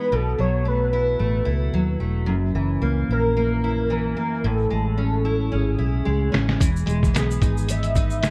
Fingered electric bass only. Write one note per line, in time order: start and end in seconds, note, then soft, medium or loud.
0.13 0.34 B1 loud
0.39 1.16 B1 medium
1.20 1.42 A1 medium
1.47 1.68 C#2 medium
1.74 1.95 D#2 medium
2.00 2.28 E1 medium
2.28 2.50 F#1 loud
2.55 2.77 F#1 loud
2.82 3.04 C#2 loud
3.09 4.13 A#1 medium
4.44 4.66 A1 loud
4.71 5.48 A1 medium
5.53 5.75 G#1 medium
5.79 6.01 B1 medium
6.07 6.28 C#2 medium
6.35 6.56 A1 medium
6.61 6.83 E1 medium
6.88 7.09 E1 loud
7.16 7.37 B1 medium
7.42 8.30 G#1 medium